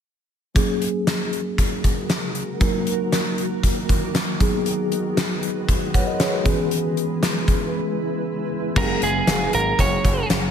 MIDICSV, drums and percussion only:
0, 0, Header, 1, 2, 480
1, 0, Start_track
1, 0, Tempo, 512821
1, 522, Time_signature, 4, 2, 24, 8
1, 9836, End_track
2, 0, Start_track
2, 0, Title_t, "Drums"
2, 522, Note_on_c, 9, 36, 93
2, 522, Note_on_c, 9, 42, 79
2, 615, Note_off_c, 9, 36, 0
2, 616, Note_off_c, 9, 42, 0
2, 764, Note_on_c, 9, 42, 71
2, 858, Note_off_c, 9, 42, 0
2, 1003, Note_on_c, 9, 38, 102
2, 1005, Note_on_c, 9, 42, 80
2, 1096, Note_off_c, 9, 38, 0
2, 1099, Note_off_c, 9, 42, 0
2, 1244, Note_on_c, 9, 42, 59
2, 1338, Note_off_c, 9, 42, 0
2, 1481, Note_on_c, 9, 36, 77
2, 1484, Note_on_c, 9, 42, 79
2, 1575, Note_off_c, 9, 36, 0
2, 1578, Note_off_c, 9, 42, 0
2, 1724, Note_on_c, 9, 36, 73
2, 1725, Note_on_c, 9, 42, 57
2, 1817, Note_off_c, 9, 36, 0
2, 1818, Note_off_c, 9, 42, 0
2, 1961, Note_on_c, 9, 42, 71
2, 1963, Note_on_c, 9, 38, 101
2, 2055, Note_off_c, 9, 42, 0
2, 2056, Note_off_c, 9, 38, 0
2, 2200, Note_on_c, 9, 42, 60
2, 2294, Note_off_c, 9, 42, 0
2, 2440, Note_on_c, 9, 42, 79
2, 2442, Note_on_c, 9, 36, 102
2, 2534, Note_off_c, 9, 42, 0
2, 2536, Note_off_c, 9, 36, 0
2, 2684, Note_on_c, 9, 42, 76
2, 2778, Note_off_c, 9, 42, 0
2, 2925, Note_on_c, 9, 38, 98
2, 2927, Note_on_c, 9, 42, 78
2, 3018, Note_off_c, 9, 38, 0
2, 3020, Note_off_c, 9, 42, 0
2, 3164, Note_on_c, 9, 42, 57
2, 3258, Note_off_c, 9, 42, 0
2, 3402, Note_on_c, 9, 36, 75
2, 3402, Note_on_c, 9, 42, 79
2, 3496, Note_off_c, 9, 36, 0
2, 3496, Note_off_c, 9, 42, 0
2, 3644, Note_on_c, 9, 36, 73
2, 3645, Note_on_c, 9, 42, 56
2, 3738, Note_off_c, 9, 36, 0
2, 3738, Note_off_c, 9, 42, 0
2, 3881, Note_on_c, 9, 42, 71
2, 3883, Note_on_c, 9, 38, 98
2, 3975, Note_off_c, 9, 42, 0
2, 3976, Note_off_c, 9, 38, 0
2, 4122, Note_on_c, 9, 42, 62
2, 4123, Note_on_c, 9, 36, 96
2, 4216, Note_off_c, 9, 36, 0
2, 4216, Note_off_c, 9, 42, 0
2, 4362, Note_on_c, 9, 42, 77
2, 4455, Note_off_c, 9, 42, 0
2, 4603, Note_on_c, 9, 42, 74
2, 4696, Note_off_c, 9, 42, 0
2, 4842, Note_on_c, 9, 38, 100
2, 4844, Note_on_c, 9, 42, 83
2, 4935, Note_off_c, 9, 38, 0
2, 4938, Note_off_c, 9, 42, 0
2, 5081, Note_on_c, 9, 42, 60
2, 5175, Note_off_c, 9, 42, 0
2, 5322, Note_on_c, 9, 36, 78
2, 5322, Note_on_c, 9, 42, 77
2, 5415, Note_off_c, 9, 36, 0
2, 5415, Note_off_c, 9, 42, 0
2, 5563, Note_on_c, 9, 36, 77
2, 5563, Note_on_c, 9, 42, 60
2, 5656, Note_off_c, 9, 42, 0
2, 5657, Note_off_c, 9, 36, 0
2, 5801, Note_on_c, 9, 42, 76
2, 5802, Note_on_c, 9, 38, 100
2, 5895, Note_off_c, 9, 42, 0
2, 5896, Note_off_c, 9, 38, 0
2, 6042, Note_on_c, 9, 42, 59
2, 6043, Note_on_c, 9, 36, 93
2, 6136, Note_off_c, 9, 42, 0
2, 6137, Note_off_c, 9, 36, 0
2, 6283, Note_on_c, 9, 42, 78
2, 6377, Note_off_c, 9, 42, 0
2, 6526, Note_on_c, 9, 42, 75
2, 6620, Note_off_c, 9, 42, 0
2, 6764, Note_on_c, 9, 38, 101
2, 6766, Note_on_c, 9, 42, 87
2, 6858, Note_off_c, 9, 38, 0
2, 6860, Note_off_c, 9, 42, 0
2, 7000, Note_on_c, 9, 36, 81
2, 7003, Note_on_c, 9, 42, 61
2, 7094, Note_off_c, 9, 36, 0
2, 7096, Note_off_c, 9, 42, 0
2, 8200, Note_on_c, 9, 49, 80
2, 8201, Note_on_c, 9, 36, 100
2, 8294, Note_off_c, 9, 49, 0
2, 8295, Note_off_c, 9, 36, 0
2, 8442, Note_on_c, 9, 42, 75
2, 8536, Note_off_c, 9, 42, 0
2, 8680, Note_on_c, 9, 38, 99
2, 8683, Note_on_c, 9, 42, 83
2, 8774, Note_off_c, 9, 38, 0
2, 8776, Note_off_c, 9, 42, 0
2, 8921, Note_on_c, 9, 42, 61
2, 9015, Note_off_c, 9, 42, 0
2, 9161, Note_on_c, 9, 36, 75
2, 9163, Note_on_c, 9, 42, 84
2, 9255, Note_off_c, 9, 36, 0
2, 9257, Note_off_c, 9, 42, 0
2, 9403, Note_on_c, 9, 36, 80
2, 9404, Note_on_c, 9, 42, 58
2, 9496, Note_off_c, 9, 36, 0
2, 9497, Note_off_c, 9, 42, 0
2, 9640, Note_on_c, 9, 42, 80
2, 9641, Note_on_c, 9, 38, 101
2, 9734, Note_off_c, 9, 42, 0
2, 9735, Note_off_c, 9, 38, 0
2, 9836, End_track
0, 0, End_of_file